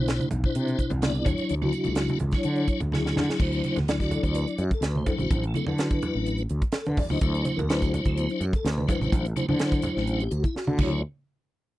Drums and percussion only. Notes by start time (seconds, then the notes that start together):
0.08 snare, closed hi-hat
0.20 closed hi-hat, high conga
0.31 closed hi-hat, low conga
0.44 kick
0.55 closed hi-hat
0.68 closed hi-hat
0.79 kick, closed hi-hat
0.90 closed hi-hat, low conga
1.02 snare, closed hi-hat, high conga
1.15 closed hi-hat
1.25 kick, closed hi-hat, low conga
1.38 closed hi-hat
1.49 closed hi-hat
1.62 high conga
1.73 closed hi-hat
1.85 closed hi-hat, high conga
1.95 snare, closed hi-hat
2.08 closed hi-hat, high conga
2.19 closed hi-hat, low conga
2.31 kick, snare, closed hi-hat
2.43 closed hi-hat
2.56 closed hi-hat
2.68 kick, closed hi-hat
2.80 closed hi-hat, low conga
2.92 snare, high conga
3.06 snare
3.17 snare, high conga, low conga
3.30 snare
3.40 kick, crash
3.53 closed hi-hat
3.64 closed hi-hat, high conga
3.76 snare, closed hi-hat, high conga, low conga
3.88 snare, closed hi-hat
4.00 kick, snare, closed hi-hat
4.11 closed hi-hat, low conga
4.23 kick, closed hi-hat
4.35 closed hi-hat
4.48 closed hi-hat
4.58 closed hi-hat
4.71 kick, closed hi-hat
4.82 snare, closed hi-hat
4.95 high conga
5.06 kick, closed hi-hat, low conga
5.18 closed hi-hat, high conga
5.31 kick, closed hi-hat
5.44 closed hi-hat
5.54 closed hi-hat, high conga
5.67 high conga, low conga
5.78 snare, closed hi-hat
5.91 kick, closed hi-hat
6.02 closed hi-hat, low conga
6.26 closed hi-hat
6.38 closed hi-hat
6.49 closed hi-hat
6.62 kick, closed hi-hat
6.72 snare, closed hi-hat
6.86 closed hi-hat, high conga
6.97 kick, open hi-hat, low conga
7.10 high conga
7.21 kick, closed hi-hat
7.35 closed hi-hat
7.45 closed hi-hat, high conga
7.59 closed hi-hat, high conga, low conga
7.70 snare, closed hi-hat
7.82 kick, closed hi-hat
7.94 closed hi-hat, low conga
8.05 kick, closed hi-hat
8.18 closed hi-hat
8.29 closed hi-hat
8.41 closed hi-hat
8.53 kick, closed hi-hat
8.65 snare, closed hi-hat
8.78 high conga
8.89 kick, closed hi-hat, low conga
9.01 closed hi-hat, high conga
9.12 kick, closed hi-hat
9.25 closed hi-hat
9.36 closed hi-hat, high conga
9.49 high conga, low conga
9.59 snare, closed hi-hat
9.72 kick, closed hi-hat
9.82 closed hi-hat, high conga, low conga
9.97 snare
10.07 closed hi-hat
10.20 closed hi-hat
10.31 closed hi-hat
10.44 kick, closed hi-hat
10.56 snare
10.67 high conga
10.78 kick, crash, high conga